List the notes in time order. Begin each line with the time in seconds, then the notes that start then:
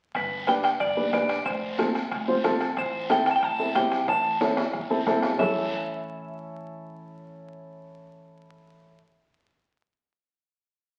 0.14 G1 B4, bombo low, bombo rim, high timbale, long guiro
0.47 D4 G4 B4 G5, bombo rim, high conga, high timbale, short guiro
0.63 G5, bombo rim, high timbale, short guiro
0.80 G1 D5, bombo rim, high timbale, long guiro
0.96 D4 G4 B4, high conga
1.13 B1 D4 G4 B4 D5, bombo low, bombo rim, high conga, high timbale, short guiro
1.29 bombo rim, high timbale, short guiro
1.45 F1 C5, bombo low, bombo rim, high timbale, long guiro
1.78 C4 F4 A4, bombo rim, high conga, high timbale, short guiro
1.95 bombo rim, high timbale, short guiro
2.11 F1, bombo rim, high timbale, long guiro
2.28 C4 F4 C5, high conga
2.44 A1 C4 F4 A4, bombo low, bombo rim, high conga, high timbale, low timbale, short guiro
2.60 bombo rim, high timbale, short guiro
2.76 A1 C5, bombo low, bombo rim, high timbale, long guiro
3.09 C4 E4 A4 G5, bombo rim, high conga, high timbale, short guiro
3.26 G5, bombo rim, high timbale, short guiro
3.31 A5
3.36 G5
3.42 A1 A5, bombo rim, high timbale, long guiro
3.59 C4 E4 A4
3.75 C2 C4 E4 G4 G5, bombo low, bombo rim, high conga, high timbale, low timbale, short guiro
3.92 bombo rim, high timbale, short guiro
4.08 A1 A5, bombo low, bombo rim, high timbale, long guiro
4.41 C4 E4 A4, bombo rim, high conga, high timbale, short guiro
4.57 bombo rim, low timbale, short guiro
4.73 A1, bombo rim, long guiro
4.90 C4 E4 A4, high conga
5.06 C2 C4 E4 A4, bombo low, bombo rim, high conga, low timbale, short guiro
5.23 bombo rim, low timbale, short guiro
5.37 A1 C#4 E4 E5, bombo low, low conga, low timbale, long guiro
5.41 A4